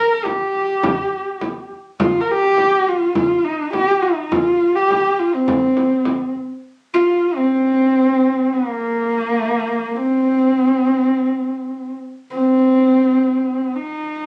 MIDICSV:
0, 0, Header, 1, 3, 480
1, 0, Start_track
1, 0, Tempo, 581395
1, 1640, Time_signature, 4, 2, 24, 8
1, 11773, End_track
2, 0, Start_track
2, 0, Title_t, "Horsehead fiddle"
2, 0, Program_c, 0, 110
2, 0, Note_on_c, 0, 70, 93
2, 197, Note_on_c, 0, 67, 82
2, 209, Note_off_c, 0, 70, 0
2, 1398, Note_off_c, 0, 67, 0
2, 1662, Note_on_c, 0, 65, 100
2, 1824, Note_on_c, 0, 70, 73
2, 1836, Note_off_c, 0, 65, 0
2, 1908, Note_on_c, 0, 67, 106
2, 1920, Note_off_c, 0, 70, 0
2, 2378, Note_on_c, 0, 65, 93
2, 2391, Note_off_c, 0, 67, 0
2, 2605, Note_off_c, 0, 65, 0
2, 2610, Note_on_c, 0, 65, 97
2, 2844, Note_on_c, 0, 63, 84
2, 2856, Note_off_c, 0, 65, 0
2, 3081, Note_off_c, 0, 63, 0
2, 3085, Note_on_c, 0, 67, 101
2, 3321, Note_on_c, 0, 63, 84
2, 3334, Note_off_c, 0, 67, 0
2, 3568, Note_on_c, 0, 65, 97
2, 3580, Note_off_c, 0, 63, 0
2, 3923, Note_on_c, 0, 67, 91
2, 3936, Note_off_c, 0, 65, 0
2, 4286, Note_on_c, 0, 65, 85
2, 4299, Note_off_c, 0, 67, 0
2, 4406, Note_on_c, 0, 60, 76
2, 4419, Note_off_c, 0, 65, 0
2, 5239, Note_off_c, 0, 60, 0
2, 5729, Note_on_c, 0, 65, 94
2, 6076, Note_on_c, 0, 60, 86
2, 6089, Note_off_c, 0, 65, 0
2, 7040, Note_on_c, 0, 58, 88
2, 7052, Note_off_c, 0, 60, 0
2, 8225, Note_on_c, 0, 60, 89
2, 8237, Note_off_c, 0, 58, 0
2, 9870, Note_off_c, 0, 60, 0
2, 10158, Note_on_c, 0, 60, 84
2, 11363, Note_on_c, 0, 63, 80
2, 11376, Note_off_c, 0, 60, 0
2, 11773, Note_off_c, 0, 63, 0
2, 11773, End_track
3, 0, Start_track
3, 0, Title_t, "Frame drum"
3, 209, Note_on_c, 9, 64, 57
3, 292, Note_off_c, 9, 64, 0
3, 451, Note_on_c, 9, 64, 23
3, 534, Note_off_c, 9, 64, 0
3, 689, Note_on_c, 9, 64, 69
3, 771, Note_off_c, 9, 64, 0
3, 1167, Note_on_c, 9, 64, 56
3, 1250, Note_off_c, 9, 64, 0
3, 1408, Note_on_c, 9, 64, 19
3, 1490, Note_off_c, 9, 64, 0
3, 1649, Note_on_c, 9, 64, 73
3, 1732, Note_off_c, 9, 64, 0
3, 1881, Note_on_c, 9, 64, 21
3, 1964, Note_off_c, 9, 64, 0
3, 2127, Note_on_c, 9, 64, 55
3, 2210, Note_off_c, 9, 64, 0
3, 2367, Note_on_c, 9, 64, 24
3, 2450, Note_off_c, 9, 64, 0
3, 2603, Note_on_c, 9, 64, 64
3, 2686, Note_off_c, 9, 64, 0
3, 3082, Note_on_c, 9, 64, 57
3, 3165, Note_off_c, 9, 64, 0
3, 3323, Note_on_c, 9, 64, 18
3, 3406, Note_off_c, 9, 64, 0
3, 3565, Note_on_c, 9, 64, 66
3, 3647, Note_off_c, 9, 64, 0
3, 3808, Note_on_c, 9, 64, 20
3, 3890, Note_off_c, 9, 64, 0
3, 4050, Note_on_c, 9, 64, 49
3, 4133, Note_off_c, 9, 64, 0
3, 4286, Note_on_c, 9, 64, 21
3, 4368, Note_off_c, 9, 64, 0
3, 4523, Note_on_c, 9, 64, 61
3, 4605, Note_off_c, 9, 64, 0
3, 4763, Note_on_c, 9, 64, 44
3, 4845, Note_off_c, 9, 64, 0
3, 4998, Note_on_c, 9, 64, 51
3, 5081, Note_off_c, 9, 64, 0
3, 5240, Note_on_c, 9, 64, 20
3, 5322, Note_off_c, 9, 64, 0
3, 11773, End_track
0, 0, End_of_file